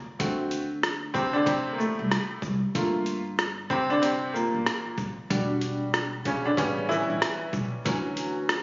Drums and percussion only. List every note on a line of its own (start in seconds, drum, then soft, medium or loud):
0.20 kick loud
0.20 closed hi-hat medium
0.51 closed hi-hat soft
0.51 shaker soft
0.83 cross-stick medium
0.83 closed hi-hat soft
1.15 kick medium
1.15 shaker soft
1.46 kick medium
1.46 closed hi-hat medium
1.80 shaker soft
2.12 cross-stick medium
2.12 closed hi-hat medium
2.42 kick medium
2.42 shaker soft
2.75 kick loud
2.75 closed hi-hat medium
3.06 closed hi-hat soft
3.06 shaker soft
3.39 cross-stick medium
3.39 closed hi-hat medium
3.70 kick medium
3.70 shaker soft
4.03 closed hi-hat medium
4.36 shaker medium
4.66 cross-stick loud
4.66 closed hi-hat medium
4.98 kick medium
4.98 shaker soft
5.30 kick loud
5.30 closed hi-hat medium
5.61 closed hi-hat soft
5.61 shaker soft
5.94 cross-stick medium
5.94 closed hi-hat medium
6.25 kick medium
6.25 closed hi-hat soft
6.25 shaker soft
6.57 kick medium
6.57 closed hi-hat medium
6.91 shaker medium
7.22 cross-stick medium
7.22 closed hi-hat medium
7.53 kick medium
7.53 shaker soft
7.86 kick loud
7.86 closed hi-hat medium
8.17 closed hi-hat soft
8.17 shaker soft
8.49 cross-stick medium
8.49 closed hi-hat medium